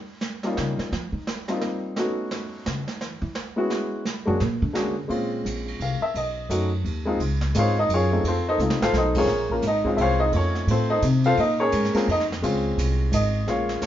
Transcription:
0.21 snare
0.43 upright piano G3 A#3 C#4 D#4 F4, snare
0.57 upright bass C#3, snare
0.78 upright bass D#3, snare
0.92 upright bass F3, brush sweep, snare
1.12 upright bass D#3
1.27 snare
1.48 upright piano G3 A#3 C4 D#4 F4, snare
1.61 snare
1.96 upright piano A3 B3 C#4 D#4 F#4, brush sweep, snare
2.31 snare
2.66 upright bass C#3, snare
2.88 upright bass D#3, snare
3.01 upright bass E3, brush sweep, snare
3.22 upright bass E3
3.35 snare
3.56 upright piano G#3 B3 C#4 E4 F#4
3.70 snare
4.05 brush sweep, snare
4.25 upright bass F#2, upright piano G#3 A#3 C#4 D4 F#4
4.40 upright bass A#2, snare
4.62 upright bass D3
4.73 upright piano G#3 A#3 C#4 D4 F#4, snare
5.08 upright bass A#2, upright piano G#3 C4 C#4 F4, ride
5.45 upright bass A#1, hi-hat pedal, ride
5.68 ride
5.79 upright bass C2, upright piano F5, ride
6.01 upright piano E5, muted upright bass stroke
6.14 upright bass B1, upright piano D#5, ride
6.49 upright bass F#2, upright piano A3 C#4 D#4 F#4, hi-hat pedal, ride
6.84 upright bass D#2, ride
7.05 upright piano G#3 C4 D#4 F4
7.20 upright bass C#2, ride
7.41 snare
7.54 upright bass G#2, upright piano G#3 C4 D#4 F4, hi-hat pedal, ride
7.59 upright piano C5 C#5 F5
7.79 upright piano D#4 D#5
7.89 upright bass F#2, ride
7.94 upright piano C#4 F4 G#4 C#5
8.11 upright piano A3 C4 D#4 F4
8.24 upright bass F2, ride
8.28 upright piano C4 F4 A4 C5
8.48 upright piano D#4 A4 C5 D#5
8.58 upright bass C#2, upright piano A3 C4 D#4 F4, hi-hat pedal
8.70 upright bass C2, snare
8.81 upright bass A1, upright piano F4 A4 C5 F5, snare
8.93 upright bass B1, snare
8.97 upright piano D#4 A4 C5 D#5
9.15 upright piano G#3 C4 C#4 F4 A#4 C#5, kick, crash
9.19 upright piano G#4
9.27 upright bass A#1, snare
9.50 upright piano A#3 C#4 F4 A#4, kick
9.62 upright bass G#1, hi-hat pedal, ride
9.67 upright piano D#4 D#5
9.85 upright piano G#3 C4 C#4 F4, kick
9.97 upright bass C2, upright piano E5, ride
10.01 upright piano F4 C5 C#5 F5
10.19 upright piano D#4 D#5
10.32 upright bass F2, upright piano A3 C#4 D#4 F4, ride
10.36 upright piano C#5
10.55 snare
10.67 upright bass A2, upright piano F4 A4 C5, ride
10.71 upright piano C4
10.90 upright piano D#4 A4 C5 D#5
11.02 upright bass C3, hi-hat pedal, ride
11.24 upright piano F4 A4 C5 F5, ride
11.37 upright bass A#2, upright piano D#4 D#5, ride
11.60 upright piano C#4 G#4 A#4 C#5
11.72 upright bass G#2, hi-hat pedal, ride
11.85 snare
11.94 upright piano G#3 A#3 C4 C#4 F4 A#4, muted upright bass stroke, snare, ride
12.07 upright bass F2, upright piano D#4 D#5, ride
12.20 snare
12.32 snare
12.42 upright bass C#2, upright piano G#3 C4 C#4 F4, ride
12.77 upright bass C2, hi-hat pedal, ride
13.12 upright bass G#1, upright piano D#5, hi-hat pedal, ride
13.47 upright bass A#1, upright piano G#3 A#3 C#4 F4 C#5 F5, brush sweep, snare
13.69 snare
13.82 upright bass C2, upright piano C#5, snare, hi-hat pedal

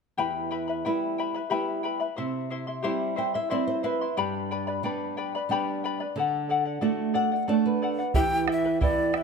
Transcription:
0.18 nylon-string guitar E2, charango G4 B4 E5 G5 B5
0.51 charango B4 E5 G5 B5
0.68 charango B4 E5 B5
0.85 nylon-string guitar G3 B3 E4, charango B4 E5 G5 B5
1.18 charango B4 E5 G5 B5
1.34 charango B4 E5 B5
1.50 nylon-string guitar G3 B3 E4, charango G4 B4 E5 G5 B5
1.83 charango B4 E5 G5 B5
2.00 charango B4 E5 B5
2.16 nylon-string guitar C3, charango E4 C5 E5 C6
2.50 charango E4 C5 E5 C6
2.67 charango E4 E5 C6
2.83 nylon-string guitar G3 C4 E4, charango E4 G4 C5 E5 C6
3.16 charango E4 C5 E5 C6, nylon-string guitar G5
3.34 charango E4 E5 C6, nylon-string guitar E5
3.50 nylon-string guitar G3 C4 E4 D5, charango E4 C5 E5 C6
3.67 nylon-string guitar C5
3.83 charango E4 C5 E5 C6, nylon-string guitar B4
4.01 charango E4 E5 C6
4.17 nylon-string guitar G2, charango G4 B4 D5 G5 B5
4.51 charango B4 D5 G5 B5
4.67 charango B4 D5 B5
4.83 nylon-string guitar G3 B3 D4, charango B4 D5 G5 B5
5.17 charango B4 D5 G5 B5
5.35 charango B4 D5 B5
5.49 nylon-string guitar G3 B3 D4, charango G4 B4 D5 G5 B5
5.84 charango B4 D5 G5 B5
6.00 charango B4 D5 B5
6.16 nylon-string guitar D3, charango A4 D5 F#5
6.49 charango A4 D5 F#5
6.65 charango D5 F#5
6.81 nylon-string guitar A3 D4 F#4, charango A4 D5 F#5
7.14 charango A4 D5 F#5, nylon-string guitar F#5
7.32 charango D5 F#5
7.48 nylon-string guitar A3 D4 F#4 D5, charango A4 D5 F#5
7.66 nylon-string guitar B4
7.82 charango A4 D5 F#5
7.99 charango D5 F#5
8.14 nylon-string guitar E3, charango E4 G4 B4 E5 G5, quena G5, bombo rim, bombo low
8.48 charango E4 B4 E5 G5, bombo rim
8.52 quena E5
8.64 charango E4 B4 G5, bombo rim
8.80 nylon-string guitar B3 E4 G4, charango E4 B4 E5 G5, quena D5, bombo low
9.13 charango E4 B4 E5 G5, bombo rim
9.17 quena E5

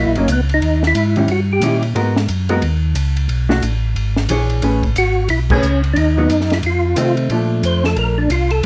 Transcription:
Already playing: hollow-body jazz guitar F#3 A#3 D#4
0.00 tonewheel organ E4
0.06 tonewheel organ A#1
0.15 tonewheel organ F#1 C#4, hollow-body jazz guitar F#3 A#3 D#4, ride
0.28 tonewheel organ C#2, hi-hat pedal, ride
0.32 tonewheel organ B3
0.49 ride
0.54 tonewheel organ D#4
0.61 tonewheel organ D#2, ride
0.83 snare
0.87 tonewheel organ E4
0.95 tonewheel organ G#2, hi-hat pedal, ride
1.16 hollow-body jazz guitar D#3 G3 C#4 E4, ride
1.28 tonewheel organ G2 F#4, ride
1.53 tonewheel organ G4
1.60 tonewheel organ A#2, hollow-body jazz guitar D#3 G3 C#4 E4, hi-hat pedal, ride
1.82 ride
1.95 tonewheel organ G#2, hollow-body jazz guitar G#3 B3 F#4 A#4, ride
2.16 snare
2.28 tonewheel organ F#2, hi-hat pedal, ride
2.49 hollow-body jazz guitar G#3 B3 F#4 A#4, ride
2.62 tonewheel organ D#2, ride
2.95 tonewheel organ C#2, hi-hat pedal, ride
3.17 ride
3.29 tonewheel organ B1, ride
3.49 hollow-body jazz guitar A3 D4 F#4, snare
3.62 tonewheel organ A1, hi-hat pedal, ride
3.96 tonewheel organ G#1, ride
4.16 snare
4.29 tonewheel organ A#1, hollow-body jazz guitar E3 D4 G#4 C#5, hi-hat pedal, ride
4.50 ride
4.62 tonewheel organ A1, hollow-body jazz guitar A3 C#4 G#4 B4, ride
4.83 kick, ride
4.96 tonewheel organ G#1 F#4, hi-hat pedal, ride
5.28 tonewheel organ B1 E4, ride
5.50 hollow-body jazz guitar A3 C#4 G#4 B4, tonewheel organ C#4, kick, crash
5.62 tonewheel organ C#2, hi-hat pedal
5.84 ride
5.93 tonewheel organ D#2 D4 D#4, ride
6.18 hollow-body jazz guitar F#3 B3 D#4
6.29 tonewheel organ F#2, hi-hat pedal, ride
6.41 snare
6.50 tonewheel organ E4, snare, ride
6.63 tonewheel organ F2 F4, ride
6.96 tonewheel organ C3, hollow-body jazz guitar D#3 A3 C4, hi-hat pedal, ride
7.17 ride
7.30 tonewheel organ A#2, hollow-body jazz guitar F3 A3 D4, ride
7.62 tonewheel organ F2 C5, hi-hat pedal, ride
7.84 tonewheel organ A4, snare
7.96 tonewheel organ A#1 A#4, ride
8.18 tonewheel organ D4
8.29 tonewheel organ C2 F4, hi-hat pedal, ride
8.50 tonewheel organ A4, ride

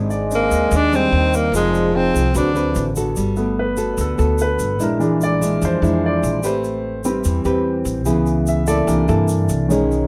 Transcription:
Already playing: upright bass G#1, nylon-string guitar G#2 C4 D4, trombone G#3
0.10 grand piano D5, shaker
0.31 nylon-string guitar C4 D4, shaker
0.35 tenor saxophone A#3
0.51 upright bass D#2, shaker
0.71 upright bass D#2, nylon-string guitar D#3, shaker
0.76 tenor saxophone D4
0.93 nylon-string guitar G3 C4 D4, tenor saxophone C4, shaker
1.11 upright bass D#2, trombone D#3
1.33 tenor saxophone A#3, shaker
1.52 upright bass F1, trombone F3, nylon-string guitar F3 C4 D#4 G#4, tenor saxophone G#3, grand piano A#4, shaker
1.68 grand piano D5
1.74 shaker
1.94 nylon-string guitar C4 D#4 G#4, tenor saxophone C4
2.14 upright bass C2, grand piano G#4, shaker
2.34 upright bass D2, nylon-string guitar D3 C4 F#4 B4, trombone F#3, tenor saxophone D4, shaker
2.55 nylon-string guitar C4 F#4 B4, shaker
2.74 upright bass A1, trombone E3, shaker
2.94 trombone D3, nylon-string guitar B3 F#4 A4, shaker
3.16 upright bass G1, nylon-string guitar G3, shaker
3.36 grand piano A3 B3, shaker
3.59 grand piano B4
3.77 nylon-string guitar B3 F#4 A4, shaker
3.97 upright bass D2, nylon-string guitar D3, grand piano A4, shaker
4.18 upright bass D2, nylon-string guitar B3 F#4 A4, shaker
4.38 grand piano B4, shaker
4.59 upright bass G1, shaker
4.79 upright bass A#1, nylon-string guitar A#2 G#3 D4 E4, grand piano A#4, shaker
5.00 grand piano E3 G#3 D4, shaker
5.21 grand piano D5, shaker
5.41 nylon-string guitar G#3 D4 E4, shaker
5.62 upright bass F2, nylon-string guitar F3, grand piano C5, shaker
5.82 upright bass F2, nylon-string guitar G#3 D4 E4, shaker
6.06 grand piano D5
6.23 upright bass A#1, shaker
6.43 upright bass A1, nylon-string guitar A3 C4 G4 B4, grand piano C5, shaker
6.64 shaker
7.04 grand piano G3 C4, nylon-string guitar C4 G4 B4, shaker
7.24 upright bass E2, nylon-string guitar E3, shaker
7.45 upright bass E2, nylon-string guitar C4 G4 B4, shaker
7.85 upright bass A1, shaker
8.05 upright bass C#2, nylon-string guitar C#3 B3 E4 G#4, grand piano E3 B3, shaker
8.26 shaker
8.47 grand piano E5, shaker
8.67 nylon-string guitar A#3 E4 A4, grand piano D5, shaker
8.87 upright bass C2, nylon-string guitar C3, grand piano E3 A#3 D4, shaker
9.08 upright bass G2, nylon-string guitar A#3 E4 A4, shaker
9.28 shaker
9.49 upright bass C2, shaker
9.68 upright bass B1, nylon-string guitar B2 G#3 C#4 D#4, grand piano D#3 G#3 C#4, shaker
9.91 shaker

